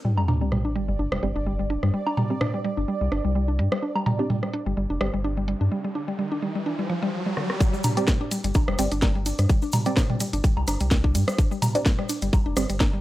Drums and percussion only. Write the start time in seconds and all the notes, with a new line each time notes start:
0.18 low woodblock
0.28 closed hi-hat, mid tom, low woodblock
0.52 cross-stick, mid tom
0.76 closed hi-hat
1.12 cross-stick
1.23 closed hi-hat
1.70 closed hi-hat
1.83 cross-stick
2.07 low woodblock
2.17 closed hi-hat, mid tom, low woodblock
2.41 cross-stick, mid tom
2.64 closed hi-hat
3.12 cross-stick, closed hi-hat
3.59 closed hi-hat
3.72 cross-stick
3.96 low woodblock
4.06 closed hi-hat, mid tom, low woodblock
4.30 mid tom
4.43 cross-stick
4.53 closed hi-hat
5.01 cross-stick, closed hi-hat
5.48 closed hi-hat
7.37 cross-stick
7.50 cross-stick
7.61 kick, closed hi-hat, shaker
7.74 shaker
7.84 closed hi-hat, mid tom, low woodblock, shaker
7.97 closed hi-hat, shaker
8.08 kick, cross-stick, snare, closed hi-hat, mid tom, shaker
8.31 closed hi-hat, shaker
8.44 closed hi-hat, shaker
8.54 kick, closed hi-hat, low woodblock, shaker
8.68 cross-stick
8.79 closed hi-hat, shaker
8.92 closed hi-hat, shaker
9.02 kick, snare, closed hi-hat, low woodblock, shaker
9.26 closed hi-hat, shaker
9.38 cross-stick, closed hi-hat, shaker
9.49 kick, closed hi-hat, shaker
9.62 shaker
9.72 closed hi-hat, mid tom, low woodblock, shaker
9.85 closed hi-hat, shaker
9.97 kick, cross-stick, snare, closed hi-hat, mid tom, shaker
10.10 mid tom
10.20 closed hi-hat, shaker
10.33 closed hi-hat, shaker
10.44 kick, closed hi-hat, shaker
10.57 low woodblock
10.67 cross-stick, closed hi-hat, low woodblock, shaker
10.80 closed hi-hat, shaker
10.91 kick, snare, closed hi-hat, shaker
11.04 kick
11.15 closed hi-hat, shaker
11.28 cross-stick, closed hi-hat, shaker
11.38 kick, closed hi-hat, shaker
11.52 shaker
11.62 closed hi-hat, mid tom, low woodblock, shaker
11.75 closed hi-hat, shaker
11.86 kick, snare, closed hi-hat, mid tom, shaker
11.99 cross-stick
12.09 closed hi-hat, shaker
12.22 closed hi-hat, shaker
12.33 kick, closed hi-hat, low woodblock, shaker
12.57 cross-stick, closed hi-hat, shaker
12.69 closed hi-hat, shaker
12.80 kick, snare, closed hi-hat, low woodblock, shaker